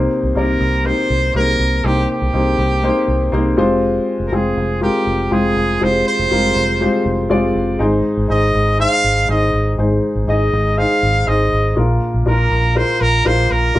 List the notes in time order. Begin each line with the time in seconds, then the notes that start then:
Already playing: C3 A#3 C4 D#4 G4 C5
0.23 C2
0.35 C2 A#3 C4 D#4 G4 A#4 D5
0.60 C2
0.84 A#3 C4 D#4 G4 C5
1.10 C2
1.34 C2 A#3 C4 D#4 G4 A#4 C5
1.59 C2
1.84 C2 C3 A#3 C4 D#4 G4 C5
2.11 G4
2.22 C2
2.33 C2 A#3 C4 D#4 G4 C5
2.59 C2
2.83 A#3 C4 D#4 G4 C5
3.08 C2
3.32 C2 A#3 C4 D#4 G4 C5
3.57 F1 G#3 C4 F4 G4 C5
4.20 F1
4.27 A#4
4.31 F1 G#3 C4 F4 G#4 C5 G5
4.57 F1
4.81 G#3 C4 F4 G4 A#4
5.07 F1
5.31 F1 G#3 C4 F4 G#4 C5 G5
5.57 F1
5.80 F1 G#3 C4 F4 G4 C5
6.07 C5
6.19 F1
6.30 F1 G3 C4 F4 G4 A#4
6.37 G#3
6.56 F1
6.80 G#3 C4 F4 G4 C5
7.06 F1
7.29 F1 G#3 C4 F4 G4 D5
7.55 F1
7.79 G#1 G#2 D#4 G#4 C5
8.17 G#1
8.28 G#1 D#4 G#4 C5 D#5
8.55 G#1
8.78 D#4 G#4 C5 F5
9.04 G#1
9.28 G#1 D#4 G#4 C5 D#5
9.54 G#1
9.78 G#1 G#2 D#4 G#4 C5
10.15 G#1
10.27 G#1 D#4 G#4 D#5
10.53 G#1
10.77 D#4 G#4 C5 F5
11.03 G#1
11.26 G#1 D#4 G#4 C5 D#5
11.53 G#1
11.76 A#1 A#2 D4 F4 A#4
12.14 A#1
12.26 A#1 D4 F4 A#4
12.51 A#1
12.75 D4 F4 A#4 C5
13.01 A#1 A#4
13.25 A#1 D4 F4 A#4 C5
13.51 A#1 A#4
13.75 A#1 A#2 D4 F4